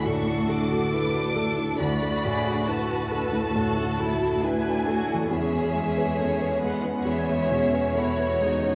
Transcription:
Already playing: D2 D3 A3 D4 E4 F#4
0.04 A2 F#4 A4 C#6
0.27 E4
0.49 A3 D6
0.71 F#4
0.93 D4 E4 B4
1.14 F#4
1.35 A3 A4
1.58 E4
1.79 D2 F#4 D5 B5
2.02 A3
2.23 A2 G#4
2.46 F#4
2.67 E4 A4 B4 A5
2.90 F#4
3.11 A3 A4
3.33 E4
3.55 A2 F#4 A4
3.77 E4
3.99 A3 E4 F#4
4.21 F#4
4.43 D4 E4 B4 G#5
4.65 F#4
4.87 A3 F#4 A4
5.09 E4
5.13 E3
5.18 G#3
5.22 C#4
5.26 B4
5.31 E2 C#4 G#4 E5
5.54 C#4
5.75 G#3
5.97 B4
6.19 C#4 A4 C#5
6.41 B4
6.62 G#3 B3 B4 F#5
6.84 C#4
7.05 E2 B3 G#4 C#5 E5
7.29 G#3
7.52 B2 C#4
7.73 B4
7.95 E4 F#4 A4 C#5
8.20 B4
8.41 G#3 D#4
8.64 C#4

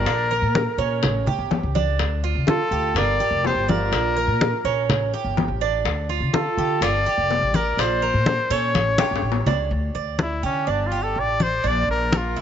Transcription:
Already playing: F4 A#4
0.06 A#1 D4, high bongo, high conga
0.31 A#4, high conga
0.42 A#2
0.55 high bongo, high conga
0.78 A#2 C#4, high bongo, high conga
1.03 A1, high bongo, high conga, low conga
1.26 G4, high bongo, high conga, low conga
1.39 G1
1.51 high bongo, low bongo, high conga
1.63 C#2
1.75 D4, high bongo, high conga
1.99 D2, high bongo, high conga
2.24 F4, high conga
2.35 D3
2.47 F4 A4, high bongo, high conga
2.71 D2 G4, high bongo, high conga
2.95 G1 F4 A#4 D5, high bongo, high conga
3.20 G4, high bongo, high conga
3.31 F1
3.45 G4 C5, high bongo, low bongo, high conga
3.55 G1
3.69 F4 A#4 D5, high bongo, high conga
3.92 A#1 D4, high bongo, high conga
4.17 A#4, high conga
4.27 A#2
4.41 high bongo, high conga
4.64 A#1 C#4, high bongo, high conga
4.88 A1, high bongo, high conga, low conga
5.14 G4, high bongo, high conga
5.24 G1
5.37 high bongo, low bongo, high conga
5.48 A1
5.61 D4, high bongo
5.85 D2, high bongo, high conga
6.09 F4, high conga
6.20 D3
6.33 F4 A4, high bongo, high conga
6.57 D3 G4, high bongo, high conga
6.81 G1 F4 A#4 D5, high bongo, high conga
7.06 G4, high bongo, high conga
7.18 F1
7.30 high bongo, low bongo, high conga
7.41 A1
7.54 G4 A#4 D5, high bongo, high conga
7.77 A#1 D4 F4 C5, high bongo, high conga
8.02 A#4, high conga
8.14 A#2
8.26 high bongo, high conga
8.50 A#2 C#4 A4 C#5, high bongo, high conga
8.74 A1, high bongo, high conga
8.98 G4, high bongo, high conga
9.11 G1
9.16 high bongo
9.22 A1
9.32 low bongo
9.46 C#2 D4, low bongo, low conga
9.71 D2, high conga
9.95 D2 D5, high conga
10.19 E4, high conga
10.43 D3 C#4 G4, high conga
10.67 G1 D4, high conga
10.87 F4
10.91 G4, high conga
11.03 A4
11.16 A1, high conga
11.20 D5
11.40 C5 D5, high conga
11.64 A#1 D4 D5, high conga
11.88 A#1 A#4, high conga
12.13 A#4, high conga
12.17 F4
12.36 A#2 E4, high conga

